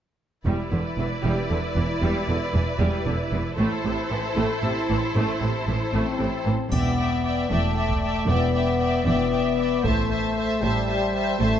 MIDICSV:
0, 0, Header, 1, 9, 480
1, 0, Start_track
1, 0, Key_signature, 1, "minor"
1, 0, Tempo, 521286
1, 424, Time_signature, 6, 3, 24, 8
1, 10678, End_track
2, 0, Start_track
2, 0, Title_t, "Violin section"
2, 0, Program_c, 0, 48
2, 6187, Note_on_c, 0, 79, 38
2, 6422, Note_off_c, 0, 79, 0
2, 6435, Note_on_c, 0, 79, 36
2, 6663, Note_off_c, 0, 79, 0
2, 6674, Note_on_c, 0, 79, 35
2, 6900, Note_off_c, 0, 79, 0
2, 6911, Note_on_c, 0, 79, 38
2, 7143, Note_off_c, 0, 79, 0
2, 7155, Note_on_c, 0, 79, 34
2, 7385, Note_off_c, 0, 79, 0
2, 7396, Note_on_c, 0, 79, 37
2, 7619, Note_off_c, 0, 79, 0
2, 7630, Note_on_c, 0, 79, 39
2, 7863, Note_off_c, 0, 79, 0
2, 7874, Note_on_c, 0, 79, 39
2, 8100, Note_off_c, 0, 79, 0
2, 8111, Note_on_c, 0, 79, 37
2, 8333, Note_off_c, 0, 79, 0
2, 8344, Note_on_c, 0, 79, 41
2, 8580, Note_off_c, 0, 79, 0
2, 8595, Note_on_c, 0, 79, 37
2, 8825, Note_off_c, 0, 79, 0
2, 8837, Note_on_c, 0, 79, 38
2, 9066, Note_off_c, 0, 79, 0
2, 9080, Note_on_c, 0, 81, 45
2, 9299, Note_off_c, 0, 81, 0
2, 9310, Note_on_c, 0, 81, 42
2, 9543, Note_off_c, 0, 81, 0
2, 9555, Note_on_c, 0, 81, 40
2, 9780, Note_off_c, 0, 81, 0
2, 9791, Note_on_c, 0, 81, 48
2, 10008, Note_off_c, 0, 81, 0
2, 10019, Note_on_c, 0, 81, 42
2, 10253, Note_off_c, 0, 81, 0
2, 10264, Note_on_c, 0, 81, 41
2, 10495, Note_off_c, 0, 81, 0
2, 10506, Note_on_c, 0, 81, 49
2, 10678, Note_off_c, 0, 81, 0
2, 10678, End_track
3, 0, Start_track
3, 0, Title_t, "Violin section"
3, 0, Program_c, 1, 48
3, 432, Note_on_c, 1, 71, 34
3, 434, Note_on_c, 1, 74, 34
3, 3273, Note_off_c, 1, 71, 0
3, 3274, Note_off_c, 1, 74, 0
3, 3311, Note_on_c, 1, 72, 46
3, 3312, Note_on_c, 1, 69, 46
3, 5967, Note_off_c, 1, 72, 0
3, 5968, Note_off_c, 1, 69, 0
3, 6190, Note_on_c, 1, 76, 36
3, 6419, Note_off_c, 1, 76, 0
3, 6430, Note_on_c, 1, 76, 34
3, 6663, Note_off_c, 1, 76, 0
3, 6679, Note_on_c, 1, 76, 35
3, 6901, Note_off_c, 1, 76, 0
3, 6912, Note_on_c, 1, 76, 38
3, 7144, Note_off_c, 1, 76, 0
3, 7154, Note_on_c, 1, 76, 35
3, 7381, Note_off_c, 1, 76, 0
3, 7392, Note_on_c, 1, 76, 35
3, 7622, Note_off_c, 1, 76, 0
3, 7633, Note_on_c, 1, 76, 39
3, 7859, Note_off_c, 1, 76, 0
3, 7870, Note_on_c, 1, 76, 37
3, 8093, Note_off_c, 1, 76, 0
3, 8104, Note_on_c, 1, 76, 39
3, 8340, Note_off_c, 1, 76, 0
3, 8350, Note_on_c, 1, 76, 40
3, 8580, Note_off_c, 1, 76, 0
3, 8591, Note_on_c, 1, 76, 37
3, 8808, Note_off_c, 1, 76, 0
3, 8819, Note_on_c, 1, 76, 41
3, 9052, Note_off_c, 1, 76, 0
3, 9063, Note_on_c, 1, 76, 45
3, 9295, Note_off_c, 1, 76, 0
3, 9306, Note_on_c, 1, 76, 39
3, 9536, Note_off_c, 1, 76, 0
3, 9547, Note_on_c, 1, 76, 44
3, 9781, Note_off_c, 1, 76, 0
3, 9791, Note_on_c, 1, 76, 45
3, 10012, Note_off_c, 1, 76, 0
3, 10024, Note_on_c, 1, 76, 42
3, 10259, Note_off_c, 1, 76, 0
3, 10281, Note_on_c, 1, 76, 47
3, 10500, Note_off_c, 1, 76, 0
3, 10511, Note_on_c, 1, 76, 47
3, 10678, Note_off_c, 1, 76, 0
3, 10678, End_track
4, 0, Start_track
4, 0, Title_t, "French horn section"
4, 0, Program_c, 2, 60
4, 5451, Note_on_c, 2, 60, 56
4, 6142, Note_off_c, 2, 60, 0
4, 6194, Note_on_c, 2, 59, 60
4, 6896, Note_off_c, 2, 59, 0
4, 6907, Note_on_c, 2, 57, 57
4, 7612, Note_off_c, 2, 57, 0
4, 7619, Note_on_c, 2, 59, 63
4, 8321, Note_off_c, 2, 59, 0
4, 8332, Note_on_c, 2, 59, 60
4, 9044, Note_off_c, 2, 59, 0
4, 9060, Note_on_c, 2, 57, 64
4, 9780, Note_on_c, 2, 55, 63
4, 9782, Note_off_c, 2, 57, 0
4, 10496, Note_on_c, 2, 57, 73
4, 10502, Note_off_c, 2, 55, 0
4, 10678, Note_off_c, 2, 57, 0
4, 10678, End_track
5, 0, Start_track
5, 0, Title_t, "Viola section"
5, 0, Program_c, 3, 48
5, 428, Note_on_c, 3, 55, 39
5, 428, Note_on_c, 3, 64, 38
5, 650, Note_off_c, 3, 55, 0
5, 665, Note_on_c, 3, 50, 28
5, 739, Note_off_c, 3, 50, 0
5, 909, Note_on_c, 3, 52, 30
5, 982, Note_off_c, 3, 52, 0
5, 1137, Note_on_c, 3, 55, 43
5, 1364, Note_off_c, 3, 55, 0
5, 1382, Note_on_c, 3, 50, 29
5, 1456, Note_off_c, 3, 50, 0
5, 1626, Note_on_c, 3, 52, 34
5, 1700, Note_off_c, 3, 52, 0
5, 1861, Note_on_c, 3, 55, 44
5, 2086, Note_off_c, 3, 55, 0
5, 2104, Note_on_c, 3, 50, 29
5, 2177, Note_off_c, 3, 50, 0
5, 2342, Note_on_c, 3, 52, 34
5, 2415, Note_off_c, 3, 52, 0
5, 2572, Note_on_c, 3, 55, 48
5, 2802, Note_off_c, 3, 55, 0
5, 2816, Note_on_c, 3, 50, 36
5, 2889, Note_off_c, 3, 50, 0
5, 3060, Note_on_c, 3, 52, 38
5, 3134, Note_off_c, 3, 52, 0
5, 3271, Note_off_c, 3, 64, 0
5, 3297, Note_on_c, 3, 57, 47
5, 3298, Note_on_c, 3, 64, 48
5, 3525, Note_off_c, 3, 57, 0
5, 3546, Note_on_c, 3, 48, 34
5, 3620, Note_off_c, 3, 48, 0
5, 3789, Note_on_c, 3, 52, 39
5, 3863, Note_off_c, 3, 52, 0
5, 4030, Note_on_c, 3, 57, 53
5, 4252, Note_off_c, 3, 57, 0
5, 4277, Note_on_c, 3, 48, 36
5, 4350, Note_off_c, 3, 48, 0
5, 4516, Note_on_c, 3, 52, 41
5, 4590, Note_off_c, 3, 52, 0
5, 4753, Note_on_c, 3, 57, 52
5, 4973, Note_off_c, 3, 57, 0
5, 4989, Note_on_c, 3, 48, 33
5, 5063, Note_off_c, 3, 48, 0
5, 5230, Note_on_c, 3, 52, 32
5, 5304, Note_off_c, 3, 52, 0
5, 5463, Note_on_c, 3, 57, 47
5, 5688, Note_off_c, 3, 57, 0
5, 5694, Note_on_c, 3, 48, 32
5, 5768, Note_off_c, 3, 48, 0
5, 5943, Note_on_c, 3, 52, 30
5, 5960, Note_off_c, 3, 64, 0
5, 6017, Note_off_c, 3, 52, 0
5, 6183, Note_on_c, 3, 74, 40
5, 6411, Note_off_c, 3, 74, 0
5, 6422, Note_on_c, 3, 74, 36
5, 6656, Note_off_c, 3, 74, 0
5, 6667, Note_on_c, 3, 74, 35
5, 6899, Note_off_c, 3, 74, 0
5, 6910, Note_on_c, 3, 74, 38
5, 7143, Note_off_c, 3, 74, 0
5, 7152, Note_on_c, 3, 74, 34
5, 7377, Note_off_c, 3, 74, 0
5, 7388, Note_on_c, 3, 74, 36
5, 7613, Note_off_c, 3, 74, 0
5, 7624, Note_on_c, 3, 74, 42
5, 7856, Note_off_c, 3, 74, 0
5, 7867, Note_on_c, 3, 74, 35
5, 8095, Note_off_c, 3, 74, 0
5, 8107, Note_on_c, 3, 74, 39
5, 8333, Note_off_c, 3, 74, 0
5, 8344, Note_on_c, 3, 74, 40
5, 8574, Note_off_c, 3, 74, 0
5, 8585, Note_on_c, 3, 74, 39
5, 8806, Note_off_c, 3, 74, 0
5, 8817, Note_on_c, 3, 74, 39
5, 9056, Note_off_c, 3, 74, 0
5, 9063, Note_on_c, 3, 72, 45
5, 9294, Note_off_c, 3, 72, 0
5, 9305, Note_on_c, 3, 72, 42
5, 9540, Note_off_c, 3, 72, 0
5, 9552, Note_on_c, 3, 72, 42
5, 9777, Note_off_c, 3, 72, 0
5, 9788, Note_on_c, 3, 72, 44
5, 10016, Note_off_c, 3, 72, 0
5, 10028, Note_on_c, 3, 72, 42
5, 10258, Note_off_c, 3, 72, 0
5, 10269, Note_on_c, 3, 72, 47
5, 10489, Note_off_c, 3, 72, 0
5, 10500, Note_on_c, 3, 72, 51
5, 10678, Note_off_c, 3, 72, 0
5, 10678, End_track
6, 0, Start_track
6, 0, Title_t, "Cello section"
6, 0, Program_c, 4, 48
6, 420, Note_on_c, 4, 40, 44
6, 493, Note_off_c, 4, 40, 0
6, 659, Note_on_c, 4, 40, 30
6, 733, Note_off_c, 4, 40, 0
6, 899, Note_on_c, 4, 40, 29
6, 973, Note_off_c, 4, 40, 0
6, 1146, Note_on_c, 4, 40, 38
6, 1220, Note_off_c, 4, 40, 0
6, 1381, Note_on_c, 4, 40, 31
6, 1455, Note_off_c, 4, 40, 0
6, 1618, Note_on_c, 4, 40, 31
6, 1692, Note_off_c, 4, 40, 0
6, 1862, Note_on_c, 4, 40, 45
6, 1935, Note_off_c, 4, 40, 0
6, 2103, Note_on_c, 4, 40, 33
6, 2177, Note_off_c, 4, 40, 0
6, 2340, Note_on_c, 4, 40, 35
6, 2414, Note_off_c, 4, 40, 0
6, 2578, Note_on_c, 4, 40, 46
6, 2652, Note_off_c, 4, 40, 0
6, 2817, Note_on_c, 4, 40, 36
6, 2891, Note_off_c, 4, 40, 0
6, 3056, Note_on_c, 4, 40, 37
6, 3129, Note_off_c, 4, 40, 0
6, 3296, Note_on_c, 4, 45, 53
6, 3370, Note_off_c, 4, 45, 0
6, 3535, Note_on_c, 4, 45, 37
6, 3608, Note_off_c, 4, 45, 0
6, 3775, Note_on_c, 4, 45, 39
6, 3849, Note_off_c, 4, 45, 0
6, 4016, Note_on_c, 4, 45, 54
6, 4089, Note_off_c, 4, 45, 0
6, 4258, Note_on_c, 4, 45, 40
6, 4331, Note_off_c, 4, 45, 0
6, 4501, Note_on_c, 4, 45, 37
6, 4574, Note_off_c, 4, 45, 0
6, 4744, Note_on_c, 4, 45, 56
6, 4817, Note_off_c, 4, 45, 0
6, 4981, Note_on_c, 4, 45, 37
6, 5054, Note_off_c, 4, 45, 0
6, 5219, Note_on_c, 4, 45, 37
6, 5293, Note_off_c, 4, 45, 0
6, 5462, Note_on_c, 4, 45, 45
6, 5535, Note_off_c, 4, 45, 0
6, 5701, Note_on_c, 4, 45, 33
6, 5775, Note_off_c, 4, 45, 0
6, 5942, Note_on_c, 4, 45, 31
6, 6015, Note_off_c, 4, 45, 0
6, 6182, Note_on_c, 4, 40, 48
6, 6795, Note_off_c, 4, 40, 0
6, 6903, Note_on_c, 4, 40, 46
6, 7515, Note_off_c, 4, 40, 0
6, 7621, Note_on_c, 4, 40, 52
6, 8234, Note_off_c, 4, 40, 0
6, 8343, Note_on_c, 4, 40, 49
6, 8955, Note_off_c, 4, 40, 0
6, 9067, Note_on_c, 4, 45, 59
6, 9677, Note_off_c, 4, 45, 0
6, 9781, Note_on_c, 4, 45, 56
6, 10394, Note_off_c, 4, 45, 0
6, 10501, Note_on_c, 4, 45, 66
6, 10678, Note_off_c, 4, 45, 0
6, 10678, End_track
7, 0, Start_track
7, 0, Title_t, "Double bass section"
7, 0, Program_c, 5, 48
7, 425, Note_on_c, 5, 28, 39
7, 499, Note_off_c, 5, 28, 0
7, 660, Note_on_c, 5, 28, 28
7, 733, Note_off_c, 5, 28, 0
7, 905, Note_on_c, 5, 28, 29
7, 979, Note_off_c, 5, 28, 0
7, 1145, Note_on_c, 5, 28, 41
7, 1218, Note_off_c, 5, 28, 0
7, 1386, Note_on_c, 5, 28, 32
7, 1460, Note_off_c, 5, 28, 0
7, 1623, Note_on_c, 5, 28, 30
7, 1697, Note_off_c, 5, 28, 0
7, 1865, Note_on_c, 5, 28, 49
7, 1939, Note_off_c, 5, 28, 0
7, 2106, Note_on_c, 5, 28, 32
7, 2180, Note_off_c, 5, 28, 0
7, 2346, Note_on_c, 5, 28, 34
7, 2419, Note_off_c, 5, 28, 0
7, 2576, Note_on_c, 5, 28, 49
7, 2650, Note_off_c, 5, 28, 0
7, 2818, Note_on_c, 5, 28, 37
7, 2892, Note_off_c, 5, 28, 0
7, 3063, Note_on_c, 5, 28, 38
7, 3137, Note_off_c, 5, 28, 0
7, 3301, Note_on_c, 5, 33, 55
7, 3374, Note_off_c, 5, 33, 0
7, 3547, Note_on_c, 5, 33, 35
7, 3621, Note_off_c, 5, 33, 0
7, 3783, Note_on_c, 5, 33, 38
7, 3857, Note_off_c, 5, 33, 0
7, 4026, Note_on_c, 5, 33, 52
7, 4099, Note_off_c, 5, 33, 0
7, 4263, Note_on_c, 5, 33, 38
7, 4337, Note_off_c, 5, 33, 0
7, 4510, Note_on_c, 5, 33, 36
7, 4584, Note_off_c, 5, 33, 0
7, 4745, Note_on_c, 5, 33, 53
7, 4818, Note_off_c, 5, 33, 0
7, 4985, Note_on_c, 5, 33, 33
7, 5059, Note_off_c, 5, 33, 0
7, 5230, Note_on_c, 5, 33, 35
7, 5304, Note_off_c, 5, 33, 0
7, 5467, Note_on_c, 5, 33, 46
7, 5541, Note_off_c, 5, 33, 0
7, 5709, Note_on_c, 5, 33, 31
7, 5783, Note_off_c, 5, 33, 0
7, 5950, Note_on_c, 5, 33, 29
7, 6023, Note_off_c, 5, 33, 0
7, 6192, Note_on_c, 5, 28, 49
7, 6800, Note_off_c, 5, 28, 0
7, 6911, Note_on_c, 5, 28, 46
7, 7520, Note_off_c, 5, 28, 0
7, 7625, Note_on_c, 5, 28, 53
7, 8236, Note_off_c, 5, 28, 0
7, 8352, Note_on_c, 5, 28, 48
7, 8960, Note_off_c, 5, 28, 0
7, 9074, Note_on_c, 5, 33, 55
7, 9680, Note_off_c, 5, 33, 0
7, 9786, Note_on_c, 5, 33, 54
7, 10396, Note_off_c, 5, 33, 0
7, 10507, Note_on_c, 5, 33, 59
7, 10678, Note_off_c, 5, 33, 0
7, 10678, End_track
8, 0, Start_track
8, 0, Title_t, "Taiko and cinematic ensemble drums"
8, 6184, Note_on_c, 9, 41, 46
8, 6276, Note_off_c, 9, 41, 0
8, 7266, Note_on_c, 9, 41, 28
8, 7358, Note_off_c, 9, 41, 0
8, 9064, Note_on_c, 9, 41, 49
8, 9156, Note_off_c, 9, 41, 0
8, 10678, End_track
9, 0, Start_track
9, 0, Title_t, "Drums"
9, 6185, Note_on_c, 9, 81, 29
9, 6277, Note_off_c, 9, 81, 0
9, 10678, End_track
0, 0, End_of_file